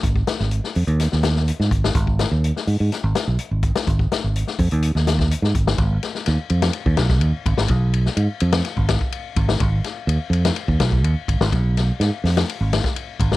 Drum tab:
RD |----------------|----------------|----------------|b-b-b-bbb-b-b-b-|
HH |x-x-x-oxx-x-x-x-|x-x-x-o-x-x-x-xx|x-x-x-oxx-x-x-x-|----------------|
SD |--oo-o--oooo-o-o|--o--o--o-o----o|--o--o---ooo-o-o|--ooo--o--oo---o|
BD |oo------------o-|oo------------o-|oo----o----o--o-|o--------ooo--o-|

RD |b-b-b-bbb-b-b-b-|b-b-b-bbb-b-b-b-|b-b-b--bb-b-b-b-|
HH |----------------|----------------|------o---------|
SD |---o---oo-o----o|--o----o--o----o|--o-o-oo--oo---o|
BD |o--------ooo--o-|o--------ooo--o-|o----------o--o-|